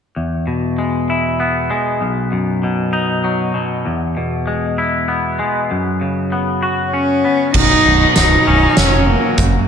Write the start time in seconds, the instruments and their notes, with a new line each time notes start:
0.16 clean electric guitar E2
0.47 clean electric guitar B2
0.78 clean electric guitar G#3
1.10 clean electric guitar E4
1.40 clean electric guitar B3
1.70 clean electric guitar G#3
2.01 clean electric guitar B1
2.32 clean electric guitar F#2
2.63 clean electric guitar B2
2.93 clean electric guitar D#4
3.24 clean electric guitar F#3
3.54 clean electric guitar B2
3.85 clean electric guitar E2
4.17 clean electric guitar B2
4.47 clean electric guitar G#3
4.78 clean electric guitar E4
5.08 clean electric guitar B3
5.39 clean electric guitar G#3
5.71 clean electric guitar F#2
6.01 clean electric guitar C#3
6.32 clean electric guitar B3
6.63 clean electric guitar F#4
6.91 cello C#4, clean electric guitar C#4
7.25 clean electric guitar B3
7.54 picked electric bass B0, clean electric guitar B1, cello D#4, kick, crash
7.86 picked electric bass B0, clean electric guitar B2
8.15 picked electric bass B0, clean electric guitar F#3, cello D#4, snare, closed hi-hat
8.47 picked electric bass B0, clean electric guitar C#4
8.77 picked electric bass F1, clean electric guitar F#3, cello C#4, snare, closed hi-hat
9.08 cello A#3
9.38 picked electric bass F#1, clean electric guitar F#2, kick, closed hi-hat